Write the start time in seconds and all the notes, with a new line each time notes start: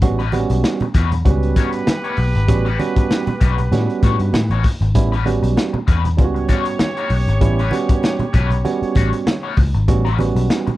0.02 A1 G3 B3 C#4 F#4, muted clean electric guitar stroke, kick, closed hi-hat, muted conga, low conga
0.19 G3 C#4 F#4 B4, closed hi-hat
0.32 G3 B3 C4 F#4, muted clean electric guitar stroke, closed hi-hat, high conga
0.40 C#4
0.50 B1, muted clean electric guitar stroke, closed hi-hat
0.64 muted clean electric guitar stroke, snare
0.80 muted clean electric guitar stroke, closed hi-hat, high conga, low conga
0.94 E2 G3 C#4 F#4 B4, kick, closed hi-hat, muted conga
1.12 muted clean electric guitar stroke, closed hi-hat, low conga
1.25 C#2 G3 B3 C#4 F#4 G4 B4, muted clean electric guitar stroke, kick, closed hi-hat, high conga
1.43 closed hi-hat
1.56 G3 C#4 F#4 C#5, kick, closed hi-hat, high conga
1.72 muted clean electric guitar stroke, closed hi-hat
1.87 muted clean electric guitar stroke, snare, muted conga, high conga
2.04 G3 C#4 F#4 C#5, closed hi-hat
2.17 B1, muted clean electric guitar stroke, open hi-hat, muted conga
2.35 G#1, muted clean electric guitar stroke, closed hi-hat
2.48 A1 G3 B3 C#4 F#4, muted clean electric guitar stroke, kick, closed hi-hat, muted conga, low conga
2.65 G3 C#4 F#4 B4, closed hi-hat
2.79 G3 B3 C#4 F#4, muted clean electric guitar stroke, closed hi-hat, muted conga, high conga
2.96 muted picked electric bass stroke, muted clean electric guitar stroke, kick, closed hi-hat
3.11 muted clean electric guitar stroke, snare, muted conga
3.27 muted clean electric guitar stroke, closed hi-hat, high conga, low conga
3.40 B1 G3 C#4 F#4 B4, kick, closed hi-hat
3.58 muted clean electric guitar stroke, closed hi-hat, low conga
3.72 A2 G3 B3 C#4 F#4, muted clean electric guitar stroke, snare, closed hi-hat, muted conga, high conga
3.90 closed hi-hat
4.03 A2 G3 C#4 F#4 C#5, kick, closed hi-hat, high conga
4.19 G2, muted clean electric guitar stroke, closed hi-hat
4.33 A2, muted clean electric guitar stroke, snare, muted conga, high conga
4.50 A1 G3 C#4 F#4 C#5, closed hi-hat
4.64 muted clean electric guitar stroke, kick, open hi-hat
4.81 G#1, muted clean electric guitar stroke, closed hi-hat
4.95 A1 G3 B3 C#4 E4, muted clean electric guitar stroke, kick, closed hi-hat, low conga
5.12 G3 C#4 F#4 B4, closed hi-hat
5.26 G3 B3 C#4 F#4, muted clean electric guitar stroke, closed hi-hat, high conga
5.43 B1, muted clean electric guitar stroke, closed hi-hat
5.57 muted clean electric guitar stroke, snare, muted conga
5.73 muted clean electric guitar stroke, high conga, low conga
5.87 E2 G3 C#4 F#4 B4, kick, closed hi-hat, muted conga
6.05 muted clean electric guitar stroke, closed hi-hat, low conga
6.17 C#2 G3 B3 C#4 F4 G4 C#5, muted clean electric guitar stroke, kick, closed hi-hat, muted conga, high conga
6.24 F#4
6.34 muted clean electric guitar stroke, closed hi-hat
6.49 G3 C#4 F#4 C#5, kick, closed hi-hat, muted conga, high conga
6.65 muted clean electric guitar stroke, closed hi-hat
6.79 muted clean electric guitar stroke, snare, muted conga, high conga
6.97 G3 C#4 F#4 C#5, closed hi-hat
7.10 B1, muted clean electric guitar stroke, open hi-hat, muted conga
7.28 G#1, muted clean electric guitar stroke, closed hi-hat
7.41 A1 G3 B3 C#4 E4, muted clean electric guitar stroke, kick, closed hi-hat, low conga
7.59 G3 C#4 F#4 B4, closed hi-hat
7.71 G3 B3 C#4 F#4, muted clean electric guitar stroke, closed hi-hat, muted conga, high conga
7.89 muted clean electric guitar stroke, muted picked electric bass stroke, kick, closed hi-hat
8.02 muted clean electric guitar stroke, snare, muted conga
8.19 muted clean electric guitar stroke, closed hi-hat, high conga, low conga
8.33 B1 G3 C#4 F#4 B4, kick, closed hi-hat
8.50 muted clean electric guitar stroke, closed hi-hat, low conga
8.64 G3 B3 C#4 F#4, muted clean electric guitar stroke, closed hi-hat, high conga
8.82 muted picked electric bass stroke, closed hi-hat
8.95 A1 G3 C#4 F#4 C#5, kick, closed hi-hat, muted conga, high conga
9.13 muted clean electric guitar stroke, closed hi-hat
9.27 muted clean electric guitar stroke, snare, high conga
9.43 G3 C#4 F#4 C#5
9.57 C#2, muted clean electric guitar stroke, kick, open hi-hat, muted conga
9.74 G#1, muted clean electric guitar stroke, closed hi-hat
9.88 A1 G3 B3 C#4 F#4, muted clean electric guitar stroke, kick, closed hi-hat, low conga
10.05 G3 C#4 F#4 B4, closed hi-hat
10.18 G3 B3 C#4 F#4, muted clean electric guitar stroke, closed hi-hat, high conga
10.35 B1, muted clean electric guitar stroke, closed hi-hat
10.50 muted clean electric guitar stroke, snare, muted conga
10.67 muted clean electric guitar stroke, closed hi-hat, high conga, low conga